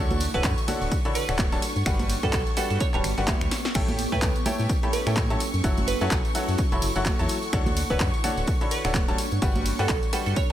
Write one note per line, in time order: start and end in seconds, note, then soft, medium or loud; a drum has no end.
0.00 0.28 D2 loud
0.00 0.23 D3 loud
0.00 0.23 D4 medium
0.00 2.22 D4 medium
0.00 0.62 E4 medium
0.00 0.23 F#4 medium
0.00 0.23 A4 medium
0.00 0.64 A4 medium
0.00 0.23 C#5 medium
0.00 0.23 F#5 loud
0.00 3.75 F#5 medium
0.00 3.74 C#6 medium
0.11 closed hi-hat soft
0.11 tambourine soft
0.11 high conga medium
0.20 open hi-hat loud
0.20 ride medium
0.20 tambourine medium
0.34 0.42 D1 medium
0.34 0.49 D3 loud
0.34 0.49 D4 medium
0.34 0.49 F#4 medium
0.34 0.49 A4 medium
0.34 0.50 B4 medium
0.34 0.49 C#5 medium
0.34 2.49 C#5 loud
0.34 0.49 F#5 loud
0.34 kick medium
0.34 closed hi-hat soft
0.34 tambourine soft
0.44 0.54 F#2 loud
0.44 kick loud
0.44 clap loud
0.44 closed hi-hat loud
0.44 tambourine soft
0.58 closed hi-hat soft
0.58 tambourine soft
0.68 0.94 D3 loud
0.68 0.94 D4 medium
0.68 0.94 F#4 medium
0.68 0.94 A4 medium
0.68 0.94 C#5 medium
0.68 0.94 F#5 loud
0.68 open hi-hat loud
0.68 ride medium
0.68 tambourine medium
0.68 high conga medium
0.82 0.89 D1 medium
0.82 closed hi-hat soft
0.82 tambourine soft
0.92 kick loud
0.92 closed hi-hat medium
0.92 tambourine medium
1.05 1.20 D3 medium
1.05 1.20 D4 medium
1.05 1.20 F#4 medium
1.05 1.20 A4 medium
1.05 1.20 C#5 medium
1.05 1.20 B5 loud
1.05 closed hi-hat soft
1.15 1.33 B4 loud
1.15 open hi-hat loud
1.15 ride medium
1.15 tambourine medium
1.29 1.58 D1 medium
1.29 1.44 D3 medium
1.29 1.44 D4 medium
1.29 1.44 F#4 medium
1.29 1.44 A4 medium
1.29 1.44 C#5 medium
1.29 1.44 F#5 loud
1.29 finger snap medium
1.29 closed hi-hat soft
1.29 tambourine soft
1.39 kick loud
1.39 clap loud
1.39 closed hi-hat loud
1.39 tambourine soft
1.39 high conga medium
1.52 1.61 G3 loud
1.52 1.61 D4 medium
1.52 1.61 F#4 medium
1.52 1.61 A4 medium
1.52 1.61 C#5 medium
1.52 1.61 A5 loud
1.52 closed hi-hat soft
1.52 tambourine soft
1.62 4.42 B3 loud
1.62 open hi-hat loud
1.62 ride medium
1.62 tambourine medium
1.76 1.83 G2 medium
1.76 4.42 G4 medium
1.76 closed hi-hat soft
1.76 tambourine soft
1.86 2.17 G1 loud
1.86 2.12 G3 medium
1.86 2.12 D4 medium
1.86 2.12 F#4 medium
1.86 2.12 G4 medium
1.86 2.12 B4 medium
1.86 2.12 F#5 loud
1.86 finger snap medium
1.86 kick loud
1.86 closed hi-hat loud
1.86 tambourine medium
1.99 closed hi-hat soft
1.99 tambourine soft
1.99 high conga medium
2.10 open hi-hat loud
2.10 ride medium
2.10 tambourine medium
2.23 2.31 G2 medium
2.23 2.38 G3 medium
2.23 2.38 D4 medium
2.23 2.38 F#4 medium
2.23 2.38 G4 medium
2.23 2.30 A4 medium
2.23 2.38 B4 medium
2.23 2.38 F#5 loud
2.23 kick medium
2.23 closed hi-hat soft
2.23 tambourine soft
2.33 2.43 B1 loud
2.33 2.42 A4 medium
2.33 kick loud
2.33 clap loud
2.33 closed hi-hat loud
2.33 tambourine soft
2.47 closed hi-hat soft
2.47 tambourine soft
2.57 2.83 G3 medium
2.57 2.83 D4 medium
2.57 2.83 F#4 medium
2.57 2.83 G4 medium
2.57 2.66 A4 medium
2.57 2.83 B4 medium
2.57 2.83 F#5 loud
2.57 open hi-hat loud
2.57 ride medium
2.57 tambourine medium
2.70 2.78 G2 medium
2.70 2.77 A4 medium
2.70 closed hi-hat soft
2.70 tambourine soft
2.80 2.89 C#5 medium
2.80 kick loud
2.80 closed hi-hat loud
2.80 tambourine medium
2.94 3.02 D1 medium
2.94 3.09 G3 medium
2.94 3.09 D4 medium
2.94 3.09 F#4 medium
2.94 3.09 G4 medium
2.94 3.09 B4 medium
2.94 3.01 C#5 medium
2.94 3.09 A5 loud
2.94 clap soft
2.94 closed hi-hat soft
3.04 3.14 G1 medium
3.04 finger snap medium
3.04 open hi-hat loud
3.04 ride medium
3.04 tambourine medium
3.18 3.34 G1 medium
3.18 3.26 G3 medium
3.18 3.26 D4 medium
3.18 3.26 F#4 medium
3.18 3.26 G4 medium
3.18 3.26 B4 medium
3.18 3.26 F#5 loud
3.18 closed hi-hat soft
3.18 tambourine soft
3.28 3.45 G3 medium
3.28 3.45 D4 medium
3.28 3.45 F#4 medium
3.28 3.45 G4 medium
3.28 3.45 B4 medium
3.28 3.45 E5 loud
3.28 kick loud
3.28 clap loud
3.28 closed hi-hat loud
3.28 tambourine soft
3.28 high conga medium
3.41 3.49 D2 loud
3.41 finger snap medium
3.41 closed hi-hat soft
3.41 tambourine soft
3.51 snare medium
3.51 open hi-hat loud
3.51 ride medium
3.51 tambourine loud
3.65 snare medium
3.65 closed hi-hat soft
3.65 tambourine soft
3.74 4.06 A1 medium
3.74 4.01 A3 medium
3.74 6.27 C#4 medium
3.74 4.01 E4 medium
3.74 4.01 G4 medium
3.74 4.01 A4 medium
3.74 4.01 C#5 medium
3.74 4.01 G5 loud
3.74 10.52 C#6 medium
3.74 finger snap medium
3.74 kick loud
3.74 closed hi-hat loud
3.74 crash medium
3.74 tambourine medium
3.88 closed hi-hat soft
3.88 tambourine soft
3.88 high conga loud
3.98 open hi-hat loud
3.98 ride medium
3.98 tambourine medium
4.12 4.20 A2 medium
4.12 4.27 A3 medium
4.12 4.27 E4 medium
4.12 4.27 G4 medium
4.12 4.27 A4 medium
4.12 8.20 A4 medium
4.12 4.28 B4 medium
4.12 4.27 C#5 medium
4.12 4.27 G5 loud
4.12 kick medium
4.12 closed hi-hat soft
4.12 tambourine soft
4.22 4.32 C#2 loud
4.22 kick loud
4.22 clap loud
4.22 closed hi-hat loud
4.22 tambourine medium
4.36 closed hi-hat soft
4.36 tambourine soft
4.46 4.72 A3 loud
4.46 4.72 E4 medium
4.46 4.72 G4 medium
4.46 4.72 A4 medium
4.46 4.72 C#5 medium
4.46 4.72 G5 loud
4.46 open hi-hat loud
4.46 ride medium
4.46 tambourine medium
4.46 high conga medium
4.59 4.67 A2 medium
4.59 closed hi-hat soft
4.59 tambourine soft
4.69 kick loud
4.69 closed hi-hat medium
4.69 tambourine medium
4.83 4.98 A3 medium
4.83 4.98 E4 medium
4.83 4.98 G4 medium
4.83 4.98 A4 medium
4.83 4.98 C#5 medium
4.83 4.98 B5 loud
4.83 closed hi-hat soft
4.93 5.11 B4 loud
4.93 open hi-hat loud
4.93 ride medium
4.93 tambourine medium
5.07 5.36 A2 medium
5.07 5.22 A3 medium
5.07 5.22 E4 medium
5.07 5.22 G4 medium
5.07 5.22 A4 medium
5.07 5.22 C#5 medium
5.07 5.22 G5 medium
5.07 finger snap medium
5.07 closed hi-hat soft
5.07 tambourine soft
5.17 kick loud
5.17 clap loud
5.17 closed hi-hat loud
5.17 tambourine soft
5.17 high conga medium
5.30 5.39 F#3 loud
5.30 5.39 E4 medium
5.30 5.39 G4 medium
5.30 5.39 A4 loud
5.30 5.39 C#5 loud
5.30 5.39 A5 loud
5.30 closed hi-hat soft
5.30 tambourine soft
5.40 8.20 E4 medium
5.40 open hi-hat loud
5.40 ride medium
5.40 tambourine medium
5.54 5.61 F#2 medium
5.54 closed hi-hat soft
5.54 tambourine soft
5.60 5.95 F#1 loud
5.60 5.90 F#3 loud
5.60 5.90 E4 medium
5.60 5.90 F#4 medium
5.60 5.90 A4 medium
5.60 5.90 C#5 medium
5.60 10.52 F#5 medium
5.60 5.90 F#5 loud
5.60 kick loud
5.60 closed hi-hat loud
5.65 tambourine medium
5.77 closed hi-hat soft
5.77 tambourine soft
5.77 high conga medium
5.88 5.99 B4 medium
5.88 open hi-hat loud
5.88 ride medium
5.88 tambourine medium
6.01 6.09 F#2 medium
6.01 6.16 F#3 loud
6.01 6.16 E4 medium
6.01 6.16 F#4 medium
6.01 6.16 A4 medium
6.01 6.67 B4 medium
6.01 6.16 C#5 medium
6.01 6.16 F#5 loud
6.01 closed hi-hat soft
6.01 tambourine soft
6.11 6.21 B1 loud
6.11 kick loud
6.11 clap loud
6.11 closed hi-hat loud
6.11 tambourine medium
6.25 closed hi-hat soft
6.25 tambourine soft
6.35 6.61 F#3 medium
6.35 6.61 E4 medium
6.35 6.61 F#4 medium
6.35 6.61 A4 medium
6.35 6.61 C#5 medium
6.35 6.61 F#5 loud
6.35 open hi-hat loud
6.35 ride medium
6.35 tambourine loud
6.48 6.56 F#2 medium
6.48 closed hi-hat soft
6.48 tambourine soft
6.58 kick loud
6.58 closed hi-hat medium
6.58 tambourine medium
6.72 6.79 E1 medium
6.72 6.87 F#3 medium
6.72 6.87 E4 medium
6.72 6.87 F#4 medium
6.72 6.87 A4 medium
6.72 6.87 C#5 medium
6.72 6.87 B5 loud
6.72 closed hi-hat soft
6.82 6.92 F#1 medium
6.82 open hi-hat loud
6.82 ride medium
6.82 tambourine loud
6.96 7.12 F#1 medium
6.96 7.11 F#3 medium
6.96 7.11 E4 medium
6.96 7.11 F#4 medium
6.96 7.11 A4 medium
6.96 7.11 C#5 medium
6.96 7.11 F#5 loud
6.96 closed hi-hat soft
6.96 tambourine soft
7.06 kick loud
7.06 clap loud
7.06 closed hi-hat loud
7.06 tambourine medium
7.06 high conga medium
7.19 7.27 E2 loud
7.19 7.34 F#3 loud
7.19 7.34 E4 medium
7.19 7.34 F#4 medium
7.19 7.34 A4 loud
7.19 7.34 C#5 medium
7.19 7.34 A5 loud
7.19 closed hi-hat soft
7.19 tambourine soft
7.29 open hi-hat loud
7.29 ride medium
7.29 tambourine medium
7.43 closed hi-hat soft
7.43 tambourine soft
7.53 7.84 D2 loud
7.53 7.79 D3 medium
7.53 9.82 D4 medium
7.53 7.79 D4 medium
7.53 7.79 F#4 medium
7.53 7.79 A4 medium
7.53 7.79 C#5 medium
7.53 7.79 F#5 loud
7.53 finger snap medium
7.53 kick loud
7.53 closed hi-hat loud
7.53 tambourine medium
7.66 closed hi-hat soft
7.66 tambourine soft
7.66 high conga loud
7.76 10.05 C#5 medium
7.76 open hi-hat loud
7.76 ride medium
7.76 tambourine medium
7.90 7.98 D1 medium
7.90 8.05 D3 loud
7.90 8.05 D4 medium
7.90 8.05 F#4 medium
7.90 8.05 A4 medium
7.90 8.06 B4 medium
7.90 8.05 C#5 medium
7.90 8.05 F#5 loud
7.90 kick medium
7.90 closed hi-hat soft
7.90 tambourine soft
8.00 8.10 F#2 loud
8.00 kick loud
8.00 clap loud
8.00 closed hi-hat medium
8.00 tambourine medium
8.14 closed hi-hat soft
8.14 tambourine soft
8.24 8.50 D3 medium
8.24 8.50 D4 medium
8.24 8.50 F#4 medium
8.24 8.50 A4 medium
8.24 8.50 C#5 medium
8.24 8.50 F#5 loud
8.24 open hi-hat loud
8.24 ride medium
8.24 tambourine medium
8.24 high conga medium
8.37 8.45 D1 medium
8.37 closed hi-hat soft
8.37 tambourine soft
8.47 kick loud
8.47 closed hi-hat medium
8.47 tambourine medium
8.61 8.76 D3 medium
8.61 8.76 D4 medium
8.61 8.76 F#4 medium
8.61 8.76 A4 medium
8.61 8.76 C#5 medium
8.61 8.76 B5 loud
8.61 closed hi-hat soft
8.71 8.89 B4 medium
8.71 open hi-hat loud
8.71 ride medium
8.71 tambourine loud
8.85 9.14 D1 medium
8.85 9.00 D3 medium
8.85 9.00 D4 medium
8.85 9.00 F#4 medium
8.85 9.00 A4 medium
8.85 9.00 C#5 medium
8.85 9.00 F#5 loud
8.85 finger snap medium
8.85 closed hi-hat soft
8.85 tambourine soft
8.94 kick loud
8.94 clap loud
8.94 closed hi-hat medium
8.94 tambourine medium
8.94 high conga loud
9.08 9.17 G3 loud
9.08 9.17 D4 medium
9.08 9.17 F#4 medium
9.08 9.17 A4 medium
9.08 9.17 C#5 medium
9.08 9.17 A5 loud
9.08 closed hi-hat soft
9.08 tambourine soft
9.18 10.52 B3 medium
9.18 open hi-hat loud
9.18 ride medium
9.18 tambourine loud
9.32 9.39 G2 medium
9.32 closed hi-hat soft
9.32 tambourine soft
9.42 9.73 G1 medium
9.42 9.68 G3 loud
9.42 9.68 D4 medium
9.42 9.68 F#4 medium
9.42 9.68 G4 medium
9.42 9.68 B4 medium
9.42 9.68 F#5 loud
9.42 kick loud
9.42 closed hi-hat loud
9.42 tambourine medium
9.54 10.52 G4 medium
9.54 closed hi-hat soft
9.54 tambourine soft
9.54 high conga medium
9.66 open hi-hat loud
9.66 ride medium
9.66 tambourine medium
9.79 9.87 G2 medium
9.79 9.94 G3 loud
9.79 9.94 D4 medium
9.79 9.94 F#4 medium
9.79 9.94 G4 medium
9.79 9.86 A4 medium
9.79 9.94 B4 medium
9.79 9.94 F#5 loud
9.79 closed hi-hat soft
9.79 tambourine soft
9.89 9.99 B1 loud
9.89 9.98 A4 medium
9.89 kick loud
9.89 clap loud
9.89 closed hi-hat medium
9.89 tambourine medium
10.03 closed hi-hat soft
10.03 tambourine soft
10.13 10.39 G3 medium
10.13 10.39 D4 medium
10.13 10.39 F#4 medium
10.13 10.39 G4 medium
10.13 10.22 A4 medium
10.13 10.39 B4 medium
10.13 10.39 F#5 loud
10.13 open hi-hat loud
10.13 ride medium
10.13 tambourine loud
10.26 10.34 G2 medium
10.26 10.33 A4 medium
10.26 closed hi-hat soft
10.26 tambourine soft
10.36 10.45 C#5 medium
10.36 kick loud
10.36 closed hi-hat medium
10.36 tambourine medium